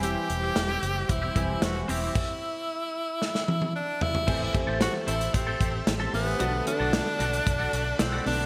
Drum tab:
CC |----------------|x---------------|x---------------|----------------|
HH |x-x-x-x-x-x-x-o-|----------------|--x-x-xxx-x-x-o-|x-x-x-xxx-x-x-o-|
SD |----o-------o---|--------oo------|----o-------o---|----o-------o---|
T1 |----------------|----------oo----|----------------|----------------|
FT |----------------|--------------oo|----------------|----------------|
BD |--------o-o-----|o---------------|o-o-----o-o-----|--------o-------|